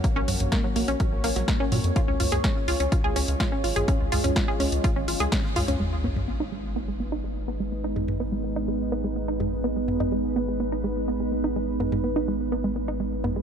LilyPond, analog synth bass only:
\new Staff \with { instrumentName = "Analog synth bass" } { \clef bass \time 4/4 \key gis \dorian \tempo 4 = 125 r16 ais,,16 ais,,16 ais,,16 r8 ais,,16 ais,,16 r16 ais,,16 ais,,16 ais,,16 r8 ais,16 eis,16 | r16 cis,16 cis,16 cis,16 r8 cis,16 cis,16 r16 cis,16 cis,16 cis,16 r8 gis,,16 gis,,16 | r16 cis,16 cis,16 cis,16 r8 cis,16 cis,16 r16 gis,,16 gis,,16 cis,16 r8 cis,16 cis,16 | gis,,1~ |
gis,,1~ | gis,,1~ | gis,,1 | }